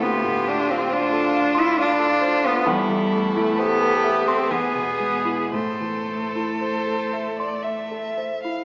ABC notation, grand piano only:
X:1
M:3/4
L:1/16
Q:1/4=65
K:Am
V:1 name="Grand piano"
D,, A,, A, F c A f c' f A c F | E,, E, A, E c A e c' E,, B,, ^G, E | A,, E, A, E c A e c' e A c E |]